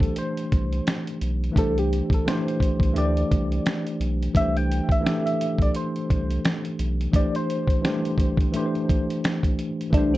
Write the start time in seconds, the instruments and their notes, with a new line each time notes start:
Already playing: tine electric piano E3 A3 D4 G4 B4 C5 G5, soft synth lead A4
0.00 sub bass B1, kick, closed hi-hat
0.16 soft synth lead C5, closed hi-hat
0.37 closed hi-hat
0.52 sub bass C2, kick, closed hi-hat
0.73 closed hi-hat
0.87 finger snap, snare, closed hi-hat
1.07 closed hi-hat
1.21 sub bass B1, closed hi-hat
1.44 closed hi-hat
1.51 tine electric piano E3 A3 D4
1.56 sub bass C2, tine electric piano G4 C5, soft synth lead A4, kick, closed hi-hat
1.78 soft synth lead G4, closed hi-hat
1.93 closed hi-hat
2.10 kick, closed hi-hat
2.14 soft synth lead A4
2.25 tine electric piano E3 A3 D4, soft synth lead C5, finger snap, snare, closed hi-hat
2.31 tine electric piano G4 C5
2.48 closed hi-hat
2.60 kick, closed hi-hat
2.80 sub bass B1, kick, closed hi-hat
2.92 sub bass D2, tine electric piano E3 A3 D4
2.96 tine electric piano G4 B4, soft synth lead D5, closed hi-hat
3.05 tine electric piano C5
3.17 closed hi-hat
3.31 sub bass C2, kick, closed hi-hat
3.52 closed hi-hat
3.66 finger snap, snare, closed hi-hat
3.87 closed hi-hat
4.00 sub bass B1, closed hi-hat
4.23 closed hi-hat
4.34 sub bass C2, tine electric piano E3 A3 D4, soft synth lead E5, kick, closed hi-hat
4.39 tine electric piano G4 C5
4.57 soft synth lead G5, closed hi-hat
4.72 closed hi-hat
4.89 soft synth lead E5, kick, closed hi-hat
5.01 tine electric piano E3 A3 D4
5.06 tine electric piano G4 A4, finger snap, snare, closed hi-hat
5.26 soft synth lead E5, closed hi-hat
5.41 closed hi-hat
5.58 sub bass B1, soft synth lead D5, kick, closed hi-hat
5.75 soft synth lead C5, closed hi-hat
5.96 closed hi-hat
6.10 sub bass C2, kick, closed hi-hat
6.31 closed hi-hat
6.45 finger snap, snare, closed hi-hat
6.65 closed hi-hat
6.79 sub bass B1, closed hi-hat
7.01 closed hi-hat
7.11 tine electric piano E3 A3 D4, kick, closed hi-hat
7.16 tine electric piano G4 C5, soft synth lead D5
7.35 soft synth lead C5, closed hi-hat
7.50 closed hi-hat
7.67 kick, closed hi-hat
7.81 tine electric piano E3 G3 D4, snare
7.85 tine electric piano G4 C5, finger snap, closed hi-hat
7.89 tine electric piano A3
8.05 closed hi-hat
8.18 kick, closed hi-hat
8.37 kick, closed hi-hat
8.52 tine electric piano E3 A3 D4, closed hi-hat
8.56 tine electric piano G4 B4, soft synth lead C5
8.66 tine electric piano C5
8.75 closed hi-hat
8.89 kick, closed hi-hat
9.10 closed hi-hat
9.24 finger snap, snare, closed hi-hat
9.43 kick, closed hi-hat
9.59 closed hi-hat
9.81 closed hi-hat
9.91 sub bass C2, tine electric piano E3 A3 D4, soft synth lead D4, kick, closed hi-hat
9.96 tine electric piano G4 C5
10.14 soft synth lead C4